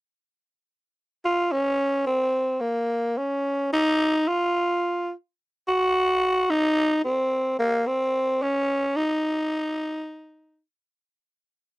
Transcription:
0, 0, Header, 1, 2, 480
1, 0, Start_track
1, 0, Tempo, 500000
1, 11310, End_track
2, 0, Start_track
2, 0, Title_t, "Tenor saxophone"
2, 0, Program_c, 0, 66
2, 1201, Note_on_c, 0, 65, 86
2, 1458, Note_on_c, 0, 61, 92
2, 1472, Note_off_c, 0, 65, 0
2, 1978, Note_off_c, 0, 61, 0
2, 1984, Note_on_c, 0, 60, 91
2, 2503, Note_on_c, 0, 58, 76
2, 2517, Note_off_c, 0, 60, 0
2, 3049, Note_on_c, 0, 61, 77
2, 3064, Note_off_c, 0, 58, 0
2, 3574, Note_off_c, 0, 61, 0
2, 3581, Note_on_c, 0, 63, 101
2, 4109, Note_on_c, 0, 65, 90
2, 4124, Note_off_c, 0, 63, 0
2, 4900, Note_off_c, 0, 65, 0
2, 5453, Note_on_c, 0, 66, 106
2, 6240, Note_on_c, 0, 63, 104
2, 6255, Note_off_c, 0, 66, 0
2, 6761, Note_off_c, 0, 63, 0
2, 6765, Note_on_c, 0, 60, 83
2, 7251, Note_off_c, 0, 60, 0
2, 7290, Note_on_c, 0, 58, 92
2, 7556, Note_on_c, 0, 60, 86
2, 7571, Note_off_c, 0, 58, 0
2, 8086, Note_on_c, 0, 61, 96
2, 8100, Note_off_c, 0, 60, 0
2, 8604, Note_on_c, 0, 63, 93
2, 8618, Note_off_c, 0, 61, 0
2, 10191, Note_off_c, 0, 63, 0
2, 11310, End_track
0, 0, End_of_file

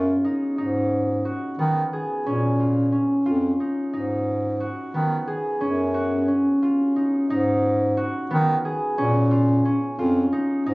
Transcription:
0, 0, Header, 1, 3, 480
1, 0, Start_track
1, 0, Tempo, 672646
1, 410, Time_signature, 5, 3, 24, 8
1, 7664, End_track
2, 0, Start_track
2, 0, Title_t, "Harp"
2, 0, Program_c, 0, 46
2, 0, Note_on_c, 0, 59, 68
2, 0, Note_on_c, 0, 61, 54
2, 0, Note_on_c, 0, 65, 62
2, 0, Note_on_c, 0, 68, 64
2, 174, Note_on_c, 0, 63, 58
2, 412, Note_off_c, 0, 63, 0
2, 414, Note_on_c, 0, 63, 67
2, 590, Note_off_c, 0, 68, 0
2, 892, Note_on_c, 0, 66, 55
2, 935, Note_off_c, 0, 65, 0
2, 949, Note_off_c, 0, 59, 0
2, 1133, Note_on_c, 0, 59, 67
2, 1378, Note_on_c, 0, 68, 60
2, 1612, Note_off_c, 0, 61, 0
2, 1615, Note_on_c, 0, 61, 72
2, 1854, Note_on_c, 0, 65, 59
2, 1896, Note_off_c, 0, 66, 0
2, 2082, Note_off_c, 0, 61, 0
2, 2085, Note_on_c, 0, 61, 55
2, 2321, Note_off_c, 0, 65, 0
2, 2324, Note_on_c, 0, 65, 71
2, 2344, Note_off_c, 0, 63, 0
2, 2569, Note_on_c, 0, 63, 61
2, 2804, Note_off_c, 0, 63, 0
2, 2807, Note_on_c, 0, 63, 75
2, 3000, Note_off_c, 0, 68, 0
2, 3284, Note_on_c, 0, 66, 63
2, 3327, Note_off_c, 0, 65, 0
2, 3349, Note_off_c, 0, 59, 0
2, 3526, Note_on_c, 0, 59, 65
2, 3764, Note_on_c, 0, 68, 61
2, 3998, Note_off_c, 0, 61, 0
2, 4001, Note_on_c, 0, 61, 69
2, 4237, Note_off_c, 0, 66, 0
2, 4239, Note_on_c, 0, 66, 63
2, 4478, Note_off_c, 0, 61, 0
2, 4481, Note_on_c, 0, 61, 53
2, 4727, Note_on_c, 0, 65, 66
2, 4736, Note_off_c, 0, 63, 0
2, 4770, Note_off_c, 0, 66, 0
2, 4967, Note_on_c, 0, 63, 57
2, 5208, Note_off_c, 0, 63, 0
2, 5210, Note_on_c, 0, 63, 82
2, 5387, Note_off_c, 0, 68, 0
2, 5688, Note_on_c, 0, 66, 66
2, 5731, Note_off_c, 0, 65, 0
2, 5742, Note_off_c, 0, 59, 0
2, 5927, Note_on_c, 0, 59, 77
2, 6172, Note_on_c, 0, 68, 71
2, 6405, Note_off_c, 0, 61, 0
2, 6408, Note_on_c, 0, 61, 83
2, 6644, Note_on_c, 0, 65, 75
2, 6687, Note_off_c, 0, 66, 0
2, 6884, Note_off_c, 0, 61, 0
2, 6887, Note_on_c, 0, 61, 68
2, 7123, Note_off_c, 0, 65, 0
2, 7126, Note_on_c, 0, 65, 84
2, 7140, Note_off_c, 0, 63, 0
2, 7368, Note_on_c, 0, 63, 77
2, 7607, Note_off_c, 0, 63, 0
2, 7610, Note_on_c, 0, 63, 88
2, 7664, Note_off_c, 0, 59, 0
2, 7664, Note_off_c, 0, 61, 0
2, 7664, Note_off_c, 0, 63, 0
2, 7664, Note_off_c, 0, 65, 0
2, 7664, Note_off_c, 0, 68, 0
2, 7664, End_track
3, 0, Start_track
3, 0, Title_t, "Bass clarinet"
3, 0, Program_c, 1, 71
3, 0, Note_on_c, 1, 42, 75
3, 116, Note_off_c, 1, 42, 0
3, 414, Note_on_c, 1, 44, 65
3, 971, Note_off_c, 1, 44, 0
3, 1132, Note_on_c, 1, 51, 82
3, 1317, Note_off_c, 1, 51, 0
3, 1615, Note_on_c, 1, 46, 69
3, 2172, Note_off_c, 1, 46, 0
3, 2331, Note_on_c, 1, 41, 84
3, 2516, Note_off_c, 1, 41, 0
3, 2812, Note_on_c, 1, 44, 70
3, 3370, Note_off_c, 1, 44, 0
3, 3530, Note_on_c, 1, 51, 85
3, 3715, Note_off_c, 1, 51, 0
3, 4013, Note_on_c, 1, 42, 70
3, 4570, Note_off_c, 1, 42, 0
3, 5211, Note_on_c, 1, 44, 77
3, 5769, Note_off_c, 1, 44, 0
3, 5930, Note_on_c, 1, 51, 95
3, 6115, Note_off_c, 1, 51, 0
3, 6412, Note_on_c, 1, 46, 85
3, 6970, Note_off_c, 1, 46, 0
3, 7132, Note_on_c, 1, 41, 96
3, 7317, Note_off_c, 1, 41, 0
3, 7610, Note_on_c, 1, 44, 92
3, 7664, Note_off_c, 1, 44, 0
3, 7664, End_track
0, 0, End_of_file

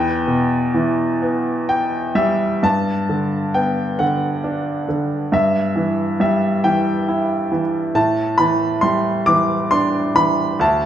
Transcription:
0, 0, Header, 1, 2, 480
1, 0, Start_track
1, 0, Key_signature, 1, "major"
1, 0, Tempo, 937500
1, 1352, Tempo, 906344
1, 1353, Time_signature, 6, 3, 24, 8
1, 2312, Tempo, 878477
1, 5810, End_track
2, 0, Start_track
2, 0, Title_t, "Grand piano"
2, 0, Program_c, 0, 0
2, 0, Note_on_c, 0, 40, 68
2, 0, Note_on_c, 0, 71, 55
2, 0, Note_on_c, 0, 79, 75
2, 25, Control_c, 0, 64, 127
2, 140, Note_on_c, 0, 47, 53
2, 381, Note_on_c, 0, 52, 56
2, 625, Note_on_c, 0, 59, 58
2, 857, Note_off_c, 0, 79, 0
2, 865, Note_on_c, 0, 79, 65
2, 1090, Note_off_c, 0, 47, 0
2, 1093, Note_off_c, 0, 79, 0
2, 1096, Note_off_c, 0, 71, 0
2, 1102, Note_on_c, 0, 55, 56
2, 1102, Note_on_c, 0, 76, 68
2, 1327, Note_off_c, 0, 52, 0
2, 1328, Note_off_c, 0, 40, 0
2, 1328, Note_off_c, 0, 59, 0
2, 1329, Note_off_c, 0, 76, 0
2, 1338, Note_off_c, 0, 55, 0
2, 1347, Note_on_c, 0, 43, 55
2, 1350, Note_on_c, 0, 81, 77
2, 1360, Control_c, 0, 64, 0
2, 1468, Control_c, 0, 64, 127
2, 1592, Note_on_c, 0, 50, 40
2, 1830, Note_on_c, 0, 79, 67
2, 1832, Note_on_c, 0, 59, 49
2, 1849, Note_off_c, 0, 81, 0
2, 2062, Note_off_c, 0, 50, 0
2, 2066, Note_on_c, 0, 78, 65
2, 2070, Note_on_c, 0, 50, 46
2, 2080, Note_off_c, 0, 79, 0
2, 2305, Note_on_c, 0, 62, 46
2, 2528, Note_off_c, 0, 78, 0
2, 2540, Note_off_c, 0, 50, 0
2, 2548, Note_on_c, 0, 50, 42
2, 2770, Note_off_c, 0, 43, 0
2, 2771, Note_off_c, 0, 59, 0
2, 2776, Note_off_c, 0, 62, 0
2, 2784, Note_off_c, 0, 50, 0
2, 2787, Note_on_c, 0, 43, 53
2, 2794, Note_on_c, 0, 76, 66
2, 2801, Control_c, 0, 64, 0
2, 2899, Control_c, 0, 64, 127
2, 3024, Note_on_c, 0, 52, 46
2, 3263, Note_off_c, 0, 76, 0
2, 3266, Note_on_c, 0, 55, 47
2, 3271, Note_on_c, 0, 76, 58
2, 3495, Note_off_c, 0, 76, 0
2, 3499, Note_off_c, 0, 52, 0
2, 3507, Note_on_c, 0, 52, 46
2, 3507, Note_on_c, 0, 79, 70
2, 3749, Note_on_c, 0, 64, 52
2, 3977, Note_off_c, 0, 52, 0
2, 3985, Note_on_c, 0, 52, 50
2, 4024, Note_off_c, 0, 79, 0
2, 4200, Note_off_c, 0, 43, 0
2, 4201, Note_off_c, 0, 55, 0
2, 4210, Note_off_c, 0, 64, 0
2, 4216, Note_off_c, 0, 52, 0
2, 4223, Note_on_c, 0, 45, 61
2, 4223, Note_on_c, 0, 81, 78
2, 4233, Control_c, 0, 64, 0
2, 4326, Control_c, 0, 64, 127
2, 4456, Note_on_c, 0, 83, 81
2, 4463, Note_on_c, 0, 52, 52
2, 4468, Note_off_c, 0, 81, 0
2, 4694, Note_on_c, 0, 84, 79
2, 4702, Note_on_c, 0, 55, 47
2, 4706, Note_off_c, 0, 83, 0
2, 4938, Note_off_c, 0, 52, 0
2, 4939, Note_on_c, 0, 86, 93
2, 4946, Note_on_c, 0, 52, 52
2, 4948, Note_off_c, 0, 84, 0
2, 5183, Note_on_c, 0, 84, 85
2, 5188, Note_on_c, 0, 62, 57
2, 5192, Note_off_c, 0, 86, 0
2, 5411, Note_off_c, 0, 84, 0
2, 5415, Note_off_c, 0, 52, 0
2, 5423, Note_on_c, 0, 52, 47
2, 5428, Note_on_c, 0, 83, 87
2, 5649, Note_off_c, 0, 45, 0
2, 5651, Note_off_c, 0, 55, 0
2, 5658, Note_off_c, 0, 62, 0
2, 5662, Note_off_c, 0, 52, 0
2, 5667, Note_on_c, 0, 38, 67
2, 5676, Note_on_c, 0, 81, 78
2, 5679, Note_off_c, 0, 83, 0
2, 5680, Control_c, 0, 64, 0
2, 5766, Control_c, 0, 64, 127
2, 5810, Note_off_c, 0, 38, 0
2, 5810, Note_off_c, 0, 81, 0
2, 5810, End_track
0, 0, End_of_file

